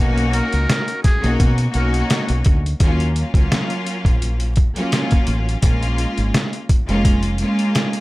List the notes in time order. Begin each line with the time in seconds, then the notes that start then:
Already playing: A#3 C#4 D#4
0.00 B1 F#4
0.18 closed hi-hat
0.33 A#4, closed hi-hat
0.53 C#2, closed hi-hat
0.70 snare, closed hi-hat
0.88 closed hi-hat
1.03 G#4, kick, snare, closed hi-hat
1.21 B1 A#3 C#4 D#4 F#4, closed hi-hat
1.40 B2, kick, closed hi-hat
1.58 closed hi-hat
1.71 B1 A#3 C#4 D#4 F#4, closed hi-hat
1.76 A#4
1.94 closed hi-hat
2.10 snare, closed hi-hat
2.29 B1, closed hi-hat
2.45 D2, kick, closed hi-hat
2.66 closed hi-hat
2.80 D#2 F#3 A#3 C#4 F4, kick, closed hi-hat
3.00 closed hi-hat
3.16 closed hi-hat
3.34 C#2 F#3 A#3 C#4 F4, kick, closed hi-hat
3.52 snare, closed hi-hat
3.70 closed hi-hat
3.87 closed hi-hat
4.05 A#1, kick, closed hi-hat
4.22 closed hi-hat
4.40 closed hi-hat
4.56 kick, closed hi-hat
4.76 F#3 A#3 C#4 F4, closed hi-hat
4.92 snare, closed hi-hat
5.11 kick, closed hi-hat
5.27 A1, closed hi-hat
5.49 closed hi-hat
5.61 A#1 G#3 A#3 C#4 F4, kick, closed hi-hat
5.83 closed hi-hat
5.98 closed hi-hat
6.18 G#1, closed hi-hat
6.34 snare, closed hi-hat
6.53 closed hi-hat
6.69 kick, closed hi-hat
6.87 F1 G#3 A#3 C#4 F4, closed hi-hat
7.05 kick, closed hi-hat
7.23 closed hi-hat
7.38 G#3 A#3 C#4 F4, closed hi-hat
7.59 closed hi-hat
7.75 snare, closed hi-hat
7.93 closed hi-hat